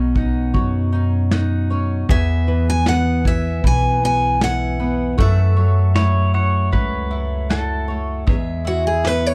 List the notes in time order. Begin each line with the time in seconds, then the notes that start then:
Already playing: B1 B2 F#3 B3 C#4 D#4 F#4 C#5 F#5
0.15 D#4 F#5, kick
0.54 F#2 F#3 C#5, kick
0.93 C#4 D#4
1.31 D#4 F#5, snare
1.70 C#4 C#5
2.09 E2 B3 G#4 E5 G#5, kick
2.47 E3 B4
2.70 G#5
2.86 B3 F#5, snare
3.25 E4 E5 G#5, kick
3.64 B1 E3 B4 G#5, kick
4.03 B3 G#5
4.41 E4 F#5 G#5, snare
4.80 B3 B4
5.18 F#2 A3 A4 E5 F#5, kick
5.57 F#3 C#5
5.95 A3 E4 C#5, snare
6.34 E4 C#5 F#5
6.72 C#2 F#3 B4 C#5, kick
7.11 A3 E4
7.50 E4 A4 F#5, snare
7.88 A3 C#5
8.27 E2 G#3 G#4 E5, kick
8.65 E4 F#4
8.87 G#4
9.04 B3 B4, snare
9.26 C#5